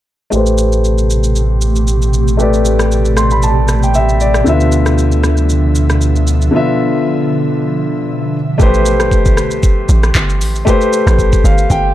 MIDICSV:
0, 0, Header, 1, 6, 480
1, 0, Start_track
1, 0, Tempo, 517241
1, 302, Time_signature, 4, 2, 24, 8
1, 11082, End_track
2, 0, Start_track
2, 0, Title_t, "Grand piano"
2, 0, Program_c, 0, 0
2, 281, Note_on_c, 0, 57, 73
2, 295, Note_on_c, 0, 67, 64
2, 311, Note_on_c, 0, 71, 69
2, 327, Note_on_c, 0, 72, 77
2, 488, Control_c, 0, 64, 127
2, 2174, Note_off_c, 0, 57, 0
2, 2181, Note_off_c, 0, 67, 0
2, 2189, Note_off_c, 0, 71, 0
2, 2197, Note_off_c, 0, 72, 0
2, 2201, Note_on_c, 0, 57, 72
2, 2215, Note_on_c, 0, 67, 70
2, 2231, Note_on_c, 0, 71, 65
2, 2246, Note_on_c, 0, 74, 77
2, 2944, Note_on_c, 0, 84, 70
2, 3066, Note_off_c, 0, 84, 0
2, 3079, Note_on_c, 0, 83, 65
2, 3177, Note_off_c, 0, 83, 0
2, 3187, Note_on_c, 0, 81, 75
2, 3530, Note_off_c, 0, 81, 0
2, 3558, Note_on_c, 0, 79, 63
2, 3657, Note_off_c, 0, 79, 0
2, 3666, Note_on_c, 0, 76, 69
2, 3887, Note_off_c, 0, 76, 0
2, 3893, Note_off_c, 0, 74, 0
2, 3907, Note_on_c, 0, 74, 73
2, 4094, Note_off_c, 0, 57, 0
2, 4101, Note_off_c, 0, 67, 0
2, 4109, Note_off_c, 0, 71, 0
2, 4123, Note_on_c, 0, 50, 75
2, 4127, Note_off_c, 0, 74, 0
2, 4137, Note_on_c, 0, 59, 68
2, 4153, Note_on_c, 0, 65, 66
2, 4155, Control_c, 0, 64, 0
2, 4167, Note_on_c, 0, 76, 84
2, 4318, Control_c, 0, 64, 127
2, 6015, Note_off_c, 0, 50, 0
2, 6022, Note_off_c, 0, 59, 0
2, 6030, Note_off_c, 0, 65, 0
2, 6037, Note_off_c, 0, 76, 0
2, 6041, Note_on_c, 0, 50, 70
2, 6057, Note_on_c, 0, 59, 67
2, 6071, Note_on_c, 0, 65, 65
2, 6087, Note_on_c, 0, 76, 81
2, 7697, Note_off_c, 0, 50, 0
2, 7705, Note_off_c, 0, 59, 0
2, 7713, Note_off_c, 0, 65, 0
2, 7721, Note_off_c, 0, 76, 0
2, 7755, Control_c, 0, 64, 0
2, 7961, Note_on_c, 0, 57, 77
2, 7976, Note_on_c, 0, 67, 70
2, 7992, Note_on_c, 0, 71, 71
2, 8005, Note_on_c, 0, 72, 84
2, 8166, Control_c, 0, 64, 127
2, 9854, Note_off_c, 0, 57, 0
2, 9861, Note_off_c, 0, 67, 0
2, 9869, Note_off_c, 0, 71, 0
2, 9876, Note_off_c, 0, 72, 0
2, 9882, Note_on_c, 0, 57, 80
2, 9896, Note_on_c, 0, 67, 72
2, 9911, Note_on_c, 0, 71, 74
2, 9926, Note_on_c, 0, 72, 87
2, 10625, Note_on_c, 0, 77, 71
2, 10846, Note_off_c, 0, 77, 0
2, 10864, Note_on_c, 0, 79, 77
2, 11082, Note_off_c, 0, 57, 0
2, 11082, Note_off_c, 0, 67, 0
2, 11082, Note_off_c, 0, 71, 0
2, 11082, Note_off_c, 0, 72, 0
2, 11082, Note_off_c, 0, 79, 0
2, 11082, End_track
3, 0, Start_track
3, 0, Title_t, "Ambient pad"
3, 0, Program_c, 1, 92
3, 300, Note_on_c, 1, 48, 77
3, 300, Note_on_c, 1, 67, 85
3, 301, Note_on_c, 1, 47, 68
3, 301, Note_on_c, 1, 57, 70
3, 4103, Note_off_c, 1, 67, 0
3, 4104, Note_off_c, 1, 48, 0
3, 4104, Note_off_c, 1, 57, 0
3, 4143, Note_on_c, 1, 50, 76
3, 4144, Note_on_c, 1, 53, 67
3, 4144, Note_on_c, 1, 76, 80
3, 7704, Note_off_c, 1, 47, 0
3, 7706, Note_off_c, 1, 50, 0
3, 7707, Note_off_c, 1, 53, 0
3, 7707, Note_off_c, 1, 76, 0
3, 11082, End_track
4, 0, Start_track
4, 0, Title_t, "Sub bass"
4, 0, Program_c, 2, 38
4, 300, Note_on_c, 2, 33, 84
4, 4104, Note_off_c, 2, 33, 0
4, 4143, Note_on_c, 2, 38, 81
4, 6025, Note_off_c, 2, 38, 0
4, 11082, End_track
5, 0, Start_track
5, 0, Title_t, "Log drum bass"
5, 0, Program_c, 3, 39
5, 7981, Note_on_c, 3, 33, 107
5, 8699, Note_on_c, 3, 36, 95
5, 8712, Note_off_c, 3, 33, 0
5, 9124, Note_off_c, 3, 36, 0
5, 9178, Note_on_c, 3, 33, 97
5, 9392, Note_off_c, 3, 33, 0
5, 9419, Note_on_c, 3, 31, 90
5, 9658, Note_on_c, 3, 33, 99
5, 9672, Note_off_c, 3, 31, 0
5, 9872, Note_off_c, 3, 33, 0
5, 10270, Note_on_c, 3, 33, 106
5, 10579, Note_off_c, 3, 33, 0
5, 10617, Note_on_c, 3, 31, 97
5, 10831, Note_off_c, 3, 31, 0
5, 10859, Note_on_c, 3, 31, 101
5, 11082, Note_off_c, 3, 31, 0
5, 11082, End_track
6, 0, Start_track
6, 0, Title_t, "Drums"
6, 301, Note_on_c, 9, 82, 65
6, 394, Note_off_c, 9, 82, 0
6, 431, Note_on_c, 9, 82, 51
6, 523, Note_off_c, 9, 82, 0
6, 538, Note_on_c, 9, 82, 91
6, 631, Note_off_c, 9, 82, 0
6, 672, Note_on_c, 9, 82, 56
6, 765, Note_off_c, 9, 82, 0
6, 785, Note_on_c, 9, 82, 64
6, 878, Note_off_c, 9, 82, 0
6, 911, Note_on_c, 9, 82, 53
6, 1004, Note_off_c, 9, 82, 0
6, 1023, Note_on_c, 9, 82, 80
6, 1116, Note_off_c, 9, 82, 0
6, 1148, Note_on_c, 9, 82, 55
6, 1240, Note_off_c, 9, 82, 0
6, 1260, Note_on_c, 9, 82, 77
6, 1352, Note_off_c, 9, 82, 0
6, 1498, Note_on_c, 9, 82, 86
6, 1591, Note_off_c, 9, 82, 0
6, 1633, Note_on_c, 9, 82, 54
6, 1725, Note_off_c, 9, 82, 0
6, 1740, Note_on_c, 9, 82, 73
6, 1833, Note_off_c, 9, 82, 0
6, 1876, Note_on_c, 9, 82, 47
6, 1969, Note_off_c, 9, 82, 0
6, 1982, Note_on_c, 9, 82, 75
6, 2075, Note_off_c, 9, 82, 0
6, 2116, Note_on_c, 9, 82, 50
6, 2209, Note_off_c, 9, 82, 0
6, 2224, Note_on_c, 9, 82, 62
6, 2317, Note_off_c, 9, 82, 0
6, 2354, Note_on_c, 9, 82, 50
6, 2447, Note_off_c, 9, 82, 0
6, 2461, Note_on_c, 9, 82, 92
6, 2554, Note_off_c, 9, 82, 0
6, 2593, Note_on_c, 9, 37, 91
6, 2595, Note_on_c, 9, 82, 58
6, 2686, Note_off_c, 9, 37, 0
6, 2688, Note_off_c, 9, 82, 0
6, 2708, Note_on_c, 9, 82, 64
6, 2801, Note_off_c, 9, 82, 0
6, 2833, Note_on_c, 9, 82, 53
6, 2925, Note_off_c, 9, 82, 0
6, 2939, Note_on_c, 9, 37, 85
6, 2943, Note_on_c, 9, 82, 84
6, 3032, Note_off_c, 9, 37, 0
6, 3036, Note_off_c, 9, 82, 0
6, 3068, Note_on_c, 9, 82, 53
6, 3161, Note_off_c, 9, 82, 0
6, 3181, Note_on_c, 9, 82, 77
6, 3273, Note_off_c, 9, 82, 0
6, 3418, Note_on_c, 9, 82, 90
6, 3420, Note_on_c, 9, 37, 90
6, 3511, Note_off_c, 9, 82, 0
6, 3513, Note_off_c, 9, 37, 0
6, 3554, Note_on_c, 9, 82, 51
6, 3647, Note_off_c, 9, 82, 0
6, 3661, Note_on_c, 9, 82, 74
6, 3754, Note_off_c, 9, 82, 0
6, 3796, Note_on_c, 9, 82, 48
6, 3889, Note_off_c, 9, 82, 0
6, 3902, Note_on_c, 9, 82, 77
6, 3995, Note_off_c, 9, 82, 0
6, 4031, Note_on_c, 9, 37, 90
6, 4036, Note_on_c, 9, 82, 51
6, 4123, Note_off_c, 9, 37, 0
6, 4129, Note_off_c, 9, 82, 0
6, 4143, Note_on_c, 9, 82, 63
6, 4236, Note_off_c, 9, 82, 0
6, 4273, Note_on_c, 9, 82, 50
6, 4366, Note_off_c, 9, 82, 0
6, 4380, Note_on_c, 9, 82, 96
6, 4472, Note_off_c, 9, 82, 0
6, 4510, Note_on_c, 9, 37, 90
6, 4513, Note_on_c, 9, 82, 60
6, 4603, Note_off_c, 9, 37, 0
6, 4605, Note_off_c, 9, 82, 0
6, 4624, Note_on_c, 9, 82, 66
6, 4717, Note_off_c, 9, 82, 0
6, 4749, Note_on_c, 9, 82, 52
6, 4842, Note_off_c, 9, 82, 0
6, 4859, Note_on_c, 9, 37, 89
6, 4862, Note_on_c, 9, 82, 78
6, 4951, Note_off_c, 9, 37, 0
6, 4955, Note_off_c, 9, 82, 0
6, 4986, Note_on_c, 9, 82, 54
6, 5079, Note_off_c, 9, 82, 0
6, 5100, Note_on_c, 9, 82, 74
6, 5193, Note_off_c, 9, 82, 0
6, 5339, Note_on_c, 9, 82, 85
6, 5432, Note_off_c, 9, 82, 0
6, 5473, Note_on_c, 9, 37, 88
6, 5474, Note_on_c, 9, 82, 55
6, 5566, Note_off_c, 9, 37, 0
6, 5566, Note_off_c, 9, 82, 0
6, 5580, Note_on_c, 9, 82, 73
6, 5673, Note_off_c, 9, 82, 0
6, 5715, Note_on_c, 9, 82, 48
6, 5808, Note_off_c, 9, 82, 0
6, 5821, Note_on_c, 9, 82, 77
6, 5914, Note_off_c, 9, 82, 0
6, 5955, Note_on_c, 9, 82, 52
6, 6047, Note_off_c, 9, 82, 0
6, 7981, Note_on_c, 9, 36, 103
6, 7982, Note_on_c, 9, 82, 73
6, 8074, Note_off_c, 9, 36, 0
6, 8075, Note_off_c, 9, 82, 0
6, 8113, Note_on_c, 9, 82, 53
6, 8206, Note_off_c, 9, 82, 0
6, 8220, Note_on_c, 9, 82, 103
6, 8313, Note_off_c, 9, 82, 0
6, 8351, Note_on_c, 9, 37, 93
6, 8353, Note_on_c, 9, 82, 64
6, 8443, Note_off_c, 9, 37, 0
6, 8446, Note_off_c, 9, 82, 0
6, 8458, Note_on_c, 9, 36, 88
6, 8464, Note_on_c, 9, 82, 67
6, 8551, Note_off_c, 9, 36, 0
6, 8557, Note_off_c, 9, 82, 0
6, 8589, Note_on_c, 9, 82, 58
6, 8592, Note_on_c, 9, 36, 107
6, 8682, Note_off_c, 9, 82, 0
6, 8685, Note_off_c, 9, 36, 0
6, 8698, Note_on_c, 9, 37, 94
6, 8701, Note_on_c, 9, 82, 90
6, 8790, Note_off_c, 9, 37, 0
6, 8794, Note_off_c, 9, 82, 0
6, 8824, Note_on_c, 9, 82, 60
6, 8917, Note_off_c, 9, 82, 0
6, 8939, Note_on_c, 9, 36, 119
6, 8939, Note_on_c, 9, 82, 84
6, 9032, Note_off_c, 9, 36, 0
6, 9032, Note_off_c, 9, 82, 0
6, 9178, Note_on_c, 9, 82, 95
6, 9271, Note_off_c, 9, 82, 0
6, 9311, Note_on_c, 9, 37, 93
6, 9312, Note_on_c, 9, 82, 54
6, 9404, Note_off_c, 9, 37, 0
6, 9405, Note_off_c, 9, 82, 0
6, 9419, Note_on_c, 9, 39, 96
6, 9420, Note_on_c, 9, 36, 97
6, 9421, Note_on_c, 9, 82, 78
6, 9511, Note_off_c, 9, 39, 0
6, 9513, Note_off_c, 9, 36, 0
6, 9514, Note_off_c, 9, 82, 0
6, 9554, Note_on_c, 9, 82, 50
6, 9647, Note_off_c, 9, 82, 0
6, 9663, Note_on_c, 9, 46, 71
6, 9663, Note_on_c, 9, 82, 82
6, 9756, Note_off_c, 9, 46, 0
6, 9756, Note_off_c, 9, 82, 0
6, 9795, Note_on_c, 9, 82, 56
6, 9888, Note_off_c, 9, 82, 0
6, 9902, Note_on_c, 9, 36, 99
6, 9904, Note_on_c, 9, 82, 70
6, 9995, Note_off_c, 9, 36, 0
6, 9997, Note_off_c, 9, 82, 0
6, 10034, Note_on_c, 9, 82, 55
6, 10127, Note_off_c, 9, 82, 0
6, 10143, Note_on_c, 9, 82, 100
6, 10236, Note_off_c, 9, 82, 0
6, 10275, Note_on_c, 9, 37, 98
6, 10277, Note_on_c, 9, 82, 63
6, 10367, Note_off_c, 9, 37, 0
6, 10370, Note_off_c, 9, 82, 0
6, 10380, Note_on_c, 9, 36, 88
6, 10388, Note_on_c, 9, 82, 68
6, 10473, Note_off_c, 9, 36, 0
6, 10481, Note_off_c, 9, 82, 0
6, 10512, Note_on_c, 9, 82, 56
6, 10513, Note_on_c, 9, 36, 106
6, 10604, Note_off_c, 9, 82, 0
6, 10606, Note_off_c, 9, 36, 0
6, 10625, Note_on_c, 9, 82, 90
6, 10718, Note_off_c, 9, 82, 0
6, 10747, Note_on_c, 9, 82, 56
6, 10840, Note_off_c, 9, 82, 0
6, 10860, Note_on_c, 9, 36, 116
6, 10861, Note_on_c, 9, 82, 79
6, 10952, Note_off_c, 9, 36, 0
6, 10954, Note_off_c, 9, 82, 0
6, 11082, End_track
0, 0, End_of_file